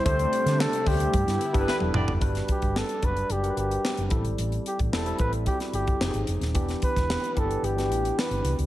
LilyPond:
<<
  \new Staff \with { instrumentName = "Flugelhorn" } { \time 4/4 \key g \major \tempo 4 = 111 c''4 a'8 g'2 r8 | r8 g'8 a'8 b'8 g'8 g'4 r8 | r8 g'8 a'8 b'8 g'8 g'4 r8 | r8 b'4 a'8 g'4 b'8. r16 | }
  \new Staff \with { instrumentName = "Horn section" } { \time 4/4 \key g \major r2. <g e' b'>16 r16 <b g' d''>8 | r1 | r1 | r1 | }
  \new Staff \with { instrumentName = "Tine electric piano" } { \time 4/4 \key g \major <a c' d' g' c''>4~ <a c' d' g' c''>16 r16 <a c' d' g' c''>8 r8. <g b d' e' a' b'>4~ <g b d' e' a' b'>16 | <g d' fis' b'>4~ <g d' fis' b'>16 r16 <g d' fis' d''>8. <g d' bes' b' fis''>4~ <g d' bes' b' fis''>16 <g c' e' a'>8~ | <g c' e' a'>8. r16 <g c' e' a'>16 <g c' e' a'>8. <g c' e' fis'>4 <f c' ees' g' aes'>4 | <e b d' g'>4~ <e b d' g'>16 r16 <e b d' g'>8. <e b d' fis' g'>4.~ <e b d' fis' g'>16 | }
  \new Staff \with { instrumentName = "Analog synth pad" } { \time 4/4 \key g \major << { <c a d'>2 <d b e'>2 | r1 | r1 | r1 | } \\ { g1 | r1 | r1 | r1 | } >> }
  \new Staff \with { instrumentName = "Fingered electric bass" } { \clef bass \time 4/4 \key g \major d,8 r16 d8 r16 d,8 g,16 g,16 r16 g,,16 r16 e,,16 f,,16 fis,,16 | g,,8 r16 g,,8 r16 fis,,8 fis,,8 g,,8 r16 fis,,16 a,,16 aes,,16 | a,,8 r16 a,,16 r8 a,,8. r16 g,,8 f,,16 aes,,16 f,,16 ees,,16 | e,,8 r16 e,,8 r16 g,,8 g,,8 a,,8 r16 g,,16 c,16 cis,16 | }
  \new DrumStaff \with { instrumentName = "Drums" } \drummode { \time 4/4 <hh bd>16 hh16 hh16 <hh sn>16 sn16 hh16 <hho bd>16 hh16 <hh bd>16 <hh sn>16 hh16 <hh bd>16 sn16 tommh16 toml16 tomfh16 | <hh bd>16 <hh sn>16 <hh bd>16 <hh bd>16 sn16 hh16 <hh bd>16 hh16 hh16 hh16 hh16 hh16 sn16 hh16 <hh bd>16 hh16 | hh16 hh16 hh16 <hh bd>16 sn16 hh16 <hh bd>16 hh16 <hh bd>16 <hh sn>16 hh16 <hh bd>16 sn16 hh16 hh16 <hh sn>16 | <hh bd>16 <hh sn>16 <hh bd>16 <hh bd sn>16 sn16 hh16 <hh bd>16 hh16 hh16 <hh sn>16 hh16 hh16 sn16 hh16 hh16 hh16 | }
>>